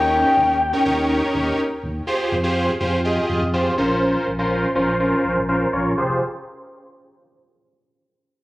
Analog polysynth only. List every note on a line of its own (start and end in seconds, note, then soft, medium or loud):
0.00 0.56 C#4 medium
0.00 0.56 D#4 medium
0.00 0.56 G4 medium
0.00 0.56 A#4 medium
0.00 0.56 C#5 medium
0.73 0.82 C#4 medium
0.73 0.82 D#4 medium
0.73 0.82 G4 medium
0.73 0.83 A#4 medium
0.73 0.83 C#5 loud
0.85 1.60 C#4 loud
0.85 1.60 D#4 medium
0.85 1.60 G4 medium
0.85 1.60 A#4 medium
0.85 1.60 C#5 loud
2.07 2.35 F4 medium
2.07 2.35 G4 medium
2.07 2.35 G#4 medium
2.07 2.36 C5 loud
2.43 2.72 F4 loud
2.43 2.72 G4 medium
2.43 2.72 G#4 medium
2.43 2.72 C5 loud
2.80 2.99 F4 medium
2.80 2.99 G4 medium
2.80 2.99 G#4 medium
2.80 2.99 C5 loud
3.05 3.42 F4 medium
3.05 3.42 G4 medium
3.05 3.42 G#4 medium
3.05 3.42 D#5 loud
3.53 3.72 F4 medium
3.53 3.72 G4 medium
3.53 3.72 G#4 medium
3.53 3.72 C5 loud
3.78 4.27 C#4 medium
3.78 4.27 F4 medium
3.78 4.27 A#4 medium
3.78 4.27 C5 loud
4.39 4.67 C#4 medium
4.39 4.67 F4 medium
4.39 4.67 A#4 medium
4.39 4.67 C5 loud
4.75 4.94 C#4 loud
4.75 4.94 F4 medium
4.75 4.94 A#4 medium
4.75 4.94 C5 loud
5.00 5.37 C#4 medium
5.00 5.37 F4 medium
5.00 5.37 A#4 medium
5.00 5.38 C5 loud
5.48 5.67 C#4 medium
5.48 5.67 F4 medium
5.48 5.68 A#4 medium
5.48 5.68 C5 loud
5.73 5.92 C#4 medium
5.73 5.92 F4 medium
5.73 5.92 A#4 medium
5.73 5.92 C#5 loud
5.97 6.20 F4 medium
5.97 6.20 G4 medium
5.97 6.20 G#4 medium
5.97 6.20 C5 loud